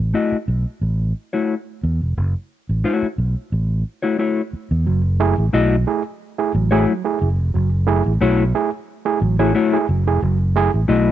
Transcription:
0.00 A1
0.14 A3 E4 F#4 D#5
0.32 muted fingered electric bass stroke
0.48 B1
0.81 A1
1.33 A3 E4 F#4 C#5
1.83 E2
2.02 F1
2.17 F#1
2.69 A1
2.84 A3 E4 F#4 C#5
3.02 muted fingered electric bass stroke
3.18 B1
3.52 A1
4.02 A3 E4 F#4 C#5
4.18 A3 E4 F#4 C#5
4.53 muted fingered electric bass stroke
4.71 E2
4.87 F#1 F#3
5.20 A3 E4 G#4
5.38 A1 E4 G#4
5.53 B1 A3 E4 F#4 G#4 D#5
5.71 F#3
5.87 A3 E4 G#4
6.38 A3 E4 G#4
6.54 A1 F#3
6.71 A3 E4 F#4 G#4 C#5
6.87 F#3
7.05 A3 E4 G#4
7.20 F#1 E4 G#4
7.39 F1
7.54 F#1 F#3
7.87 A3 E4 G#4
8.05 A1 E4 G#4
8.21 B1 A3 E4 F#4 G#4 C#5
8.39 F#3
8.55 A3 E4 G#4
9.05 A3 E4 G#4
9.21 A1 F#3
9.39 A3 E4 F#4 G#4 C#5
9.54 A3 E4 F#4 C#5
9.73 A3 E4 G#4
9.89 F#1 F#3
10.07 F1 A3 E4 G#4
10.22 F#1 F#3
10.56 A3 E4 G#4
10.74 A1 E4 G#4
10.88 B1 A3 E4 F#4 G#4 D#5
11.08 F#3

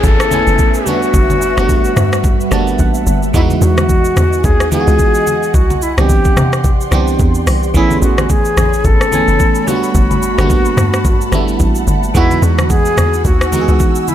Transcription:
Already playing: A3 B3 C#4 E4 G#4 B4 C#5 E5 G#5, downlifter
0.04 G#1 A4, kick, low conga, shaker
0.20 cross-stick, shaker
0.31 A3 B3 C#4 E4 G#5, high conga, shaker
0.47 F#1, shaker
0.59 kick, shaker
0.74 shaker
0.86 G3 A3 B3 D4 F#4 F#5, high conga, shaker
1.03 shaker
1.14 G1, kick, shaker
1.30 high conga, shaker
1.42 shaker
1.57 G1 G3 A3 B3 D4 F#4, cross-stick, high conga, shaker
1.69 kick, low conga, shaker
1.85 shaker
1.96 G2, cross-stick, high conga, low conga, shaker
2.13 cross-stick, shaker
2.24 kick, low conga, shaker
2.41 shaker
2.51 G1 G3 A3 A#3 D4 F#4 A5, cross-stick, high conga, shaker
2.59 B3
2.67 shaker
2.79 A1 F#5, kick, shaker
2.94 shaker
3.07 G1, high conga, shaker
3.23 shaker
3.33 E2 E3 G#3 B3 D#4 E4 F#4 D#5 F#5 G#5, kick, shaker
3.50 high conga, shaker
3.62 E2 F#4, shaker
3.78 cross-stick, high conga, shaker
3.89 kick, low conga, shaker
4.05 shaker
4.17 E2, cross-stick, high conga, low conga, shaker
4.33 shaker
4.44 D#2 G#4, kick, low conga, shaker
4.60 cross-stick, shaker
4.71 E3 G#3 B3 D#4 F4 G#4, high conga, shaker
4.80 F#4
4.87 C#2, shaker
4.99 kick, shaker
5.15 shaker
5.27 high conga, shaker
5.43 shaker
5.54 C2 F#4 G4 D5 C6, kick, shaker
5.70 high conga, shaker
5.82 E4, shaker
5.97 C2 E3 B3 C4 D4 G4, cross-stick, high conga, shaker
6.09 kick, low conga, shaker
6.25 kick, shaker
6.37 C3, cross-stick, high conga, low conga, shaker
6.53 cross-stick, shaker
6.64 kick, low conga, shaker
6.81 shaker
6.91 C2 E3 B3 C4 D4 G4, cross-stick, high conga, shaker
7.08 shaker
7.19 E2, kick, shaker
7.35 shaker
7.47 C2, cross-stick, open hi-hat, high conga, shaker
7.63 shaker
7.74 A1 E3 A3 B3 C#4 E4 G#4 C#5 G#5 B5, kick, shaker
7.90 high conga, shaker
8.02 A1 F#4, shaker
8.18 cross-stick, high conga, shaker
8.30 G#4, kick, low conga, shaker
8.45 shaker
8.57 A1, cross-stick, high conga, low conga, shaker
8.73 shaker
8.84 G#1 A4, kick, low conga, shaker
9.01 cross-stick, shaker
9.12 E3 A3 B3 C#4 G#5, high conga, shaker
9.28 F#1, shaker
9.40 kick, shaker
9.55 shaker
9.67 G3 A3 B3 D4 F4 F#4 F#5 A5, high conga, shaker
9.76 F#4
9.84 shaker
9.95 G1, kick, shaker
10.11 high conga, shaker
10.23 shaker
10.38 G1 G3 A3 A#3 D4 F#4, cross-stick, high conga, shaker
10.46 B3
10.50 kick, low conga, shaker
10.65 shaker
10.77 G2, cross-stick, high conga, low conga, shaker
10.94 cross-stick, shaker
11.05 kick, low conga, shaker
11.21 shaker
11.32 G1 G3 A3 B3 D4 E4, cross-stick, high conga, shaker
11.48 shaker
11.60 A1, kick, shaker
11.75 shaker
11.87 G1, high conga, shaker
12.03 shaker
12.14 E2 E3 G#3 B3 D#4 E4 F#4 G#5 E6, kick, shaker
12.31 high conga, shaker
12.42 E2 F#4, shaker
12.59 cross-stick, high conga, shaker
12.70 G#4, kick, low conga, shaker
12.85 shaker
12.97 E2, cross-stick, high conga, low conga, shaker
13.14 shaker
13.25 D#2 F#4, kick, low conga, shaker
13.41 cross-stick, shaker
13.52 E3 G#3 B3 D#4 F#4, high conga, shaker
13.61 G#4
13.68 C#2, shaker
13.80 kick, shaker
13.95 shaker
14.08 E4, high conga, shaker

